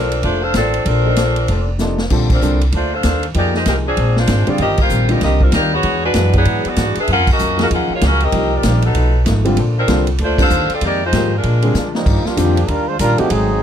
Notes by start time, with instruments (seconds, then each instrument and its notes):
Already playing: upright bass B1, saxophone section F3 C4 D4 A#4, hollow-body jazz guitar A#3 D4 A4 C5
0.12 ride
0.22 upright bass F1, saxophone section A3 D4 F4 C5, hollow-body jazz guitar A#3 D4 A4 C5, kick, ride
0.42 saxophone section D4 A4 C5 F5
0.54 upright bass A1, saxophone section F3 C4 D4 A4, hollow-body jazz guitar A#3 D4 A4 C5, snare, hi-hat pedal, ride
0.74 ride
0.85 upright bass A#1, saxophone section F3 C4 D4 A#4, hollow-body jazz guitar A#3 D4 A4 C5, kick, ride
1.04 grand piano F3 A#3 D#4 A4
1.16 hollow-body jazz guitar A#3 D4 A4 C5, snare, hi-hat pedal, ride
1.36 ride
1.48 upright bass F1, hollow-body jazz guitar A#3 D4 A4 C5, kick, ride
1.79 grand piano C3 F3 A#3 D#4, hollow-body jazz guitar A#3 D4 A4 C5, snare, hi-hat pedal
1.98 snare
2.10 upright bass A#1, grand piano D3 G3 C4 F4, hollow-body jazz guitar A#3 D4 A4 C5, kick, crash
2.30 saxophone section F3 C4 D4 A#4, kick, crash
2.41 upright bass C2, grand piano D3 G3 C4 D4, hollow-body jazz guitar A#3 D4 A4 C5, hi-hat pedal
2.61 ride
2.72 upright bass D2, saxophone section A3 D4 F4 C5, hollow-body jazz guitar A#3 D4 A4 C5, kick, ride
2.93 saxophone section D4 A4 C5 F5
3.03 upright bass D#2, hollow-body jazz guitar A#3 D4 A4 C5, kick, snare, hi-hat pedal, ride
3.23 ride
3.34 upright bass F2, grand piano F3 A#3 D#4 G4, hollow-body jazz guitar F3 A#3 D#4, saxophone section A#3 D#4 G4 D5, kick, ride
3.39 hollow-body jazz guitar G#4
3.54 saxophone section G#3 D#4 G4 C5, snare
3.66 upright bass C2, hollow-body jazz guitar F3 A#3 D#4 G#4, saxophone section G#3 D#4 G4 A#4, kick, snare, hi-hat pedal, ride
3.87 saxophone section F3 C4 D4 G#4
3.97 upright bass A#1, hollow-body jazz guitar A#2 G#3 C4 D4, kick, ride
4.17 saxophone section G#3 D4 F4 C5, snare
4.27 upright bass G#1, hollow-body jazz guitar A#2 G#3 C4 D4, kick, snare, hi-hat pedal, ride
4.47 grand piano D3 G3 C4 D4, saxophone section C4 F4 G#4 D5, muted upright bass stroke, ride
4.58 upright bass G1, hollow-body jazz guitar D#3 G3 C4 F4, saxophone section C4 G4 A#4 D#5, kick, ride
4.77 saxophone section A#3 F4 G4 C5, kick, crash
4.89 upright bass A#1, hollow-body jazz guitar D#3 G3 C4 F4, hi-hat pedal
5.09 grand piano D3 G3 C4 F4, saxophone section A#3 D#4 G4 D5, ride
5.21 upright bass C2, hollow-body jazz guitar D#3 G3 C4 F4, saxophone section C4 G4 A#4 D#5, kick, snare, ride
5.41 saxophone section G3 C4 F4 A#4, kick
5.52 upright bass D#2, hollow-body jazz guitar D#3 G3 C4 F4, saxophone section A#3 D#4 G4 D5, snare, hi-hat pedal, ride
5.73 saxophone section B3 F#4 G#4 C#5
5.82 upright bass E2, hollow-body jazz guitar E3 G#3 D4 F#4, kick, ride
6.04 saxophone section G#3 D4 F#4 B4
6.14 upright bass F#2, hollow-body jazz guitar E3 G#3 D4 F#4, kick, snare, hi-hat pedal, ride
6.33 grand piano F#3 B3 E4 G#4, saxophone section F#3 B3 D4 G#4, kick, ride
6.45 upright bass G#2, hollow-body jazz guitar E3 G#3 D4 F#4, kick, ride
6.65 saxophone section B3 F#4 G#4 D5, muted upright bass stroke, ride
6.76 upright bass G#2, hollow-body jazz guitar E3 G#3 D4 F#4, kick, snare, hi-hat pedal, ride
6.95 saxophone section D4 G#4, muted upright bass stroke, ride
7.00 saxophone section B4 E5
7.07 upright bass F#2, hollow-body jazz guitar F#2 F3 A#3 C#4, saxophone section F#5, kick, ride
7.12 saxophone section C#4 F4 A#4
7.19 upright bass F2
7.27 upright bass C#2, kick, crash
7.31 saxophone section C#4 F#4 A#4 D#5
7.39 upright bass F2, hollow-body jazz guitar F#2 F3 A#3 C#4, hi-hat pedal
7.57 grand piano F3 A#3 D#4 G#4, snare, ride
7.62 saxophone section C#4 F#4 A#4 F5
7.70 upright bass D#2, hollow-body jazz guitar F#2 F3 A#3 C#4, saxophone section C#4 F4 A#4 F#5, kick, ride
7.90 saxophone section A#3 F4 F#4, muted upright bass stroke
7.94 saxophone section C#5
8.00 upright bass C#2, hollow-body jazz guitar F#2 F3 A#3 C#4, kick, snare, hi-hat pedal, ride
8.05 saxophone section C#4 F#4 A#4 F5
8.20 saxophone section C4 G4 A#4 D#5, ride
8.32 upright bass C2, hollow-body jazz guitar C3 G3 A#3 D#4, grand piano F3 A#3 D#4 G4, kick, ride
8.55 saxophone section C4 G4 A#4 D5
8.63 upright bass A#1, hollow-body jazz guitar C3 G3 A#3 D#4, kick, snare, hi-hat pedal, ride
8.82 saxophone section F#3 B3 D#4 A4, ride
8.94 upright bass B1, hollow-body jazz guitar B2 F3 A3 D#4, kick, ride
9.24 upright bass G#1, hollow-body jazz guitar B2 F3 A3 D#4, kick, snare, hi-hat pedal, ride
9.45 grand piano D3 G3 C4 F4, ride
9.56 upright bass A#1, hollow-body jazz guitar A#3 D4 A4 C5, kick, ride
9.78 saxophone section F3 C4 D4 A#4
9.87 upright bass C2, grand piano D3 G3 C4 F4, hollow-body jazz guitar A#3 D4 A4 C5, kick, snare, hi-hat pedal, ride
10.07 ride
10.18 upright bass D2, hollow-body jazz guitar A#3 D4 A4 C5, kick, ride
10.22 saxophone section A3 D4 F4 C5
10.38 grand piano D3 G3 C4 F4, saxophone section D4 A4 C5 F5, kick, crash
10.50 upright bass D#2, hollow-body jazz guitar A#3 D4 A4 C5, hi-hat pedal
10.69 saxophone section F4 A4 D5, muted upright bass stroke, ride
10.73 saxophone section C4
10.80 hollow-body jazz guitar F2 D#3 G#3 C4, upright bass F2, kick, ride
10.85 saxophone section A#3 D#4 G4 D5
11.04 saxophone section G#3 D#4 F4 C5
11.13 hollow-body jazz guitar F2 D#3 G#3 C4, upright bass G#2, grand piano F3 A#3 D#4 G4, kick, snare, hi-hat pedal, ride
11.36 saxophone section G#3 D4 F4 A#4
11.43 upright bass A#2, hollow-body jazz guitar A#2 F3 G#3 D4, kick, ride
11.62 grand piano D3 G3 C4 G#4, ride
11.75 hollow-body jazz guitar A#2 F3 G#3 D4, upright bass D3, snare, hi-hat pedal
11.94 trombone section F3 G3 A#3 D#4, snare
12.06 upright bass G2, hollow-body jazz guitar D#3 G3 D4 F4, kick, crash
12.25 trombone section G3 A#3 D4 F4, muted upright bass stroke, snare
12.37 upright bass F2, grand piano D3 G3 C4 F4, hollow-body jazz guitar D#3 G3 D4 F4, trombone section F3 A#3 D4 G4, kick, hi-hat pedal, ride
12.57 ride
12.68 upright bass D#2, hollow-body jazz guitar D#3 G3 D4 F4, trombone section G3 D4 F4 A#4, kick, ride
12.88 trombone section G#3 D4 F4 C5
12.99 upright bass A#1, hollow-body jazz guitar D#3 G3 D4 F4, trombone section G3 D4 F4 A#4, kick, hi-hat pedal, ride
13.18 trombone section F3 A#3 D4 G4, grand piano A3 C4 D#4 F#4, muted upright bass stroke, ride
13.30 upright bass G#1, hollow-body jazz guitar G#2 F#3 A3 C4, trombone section F#3 C4 D#4 G#4, kick, ride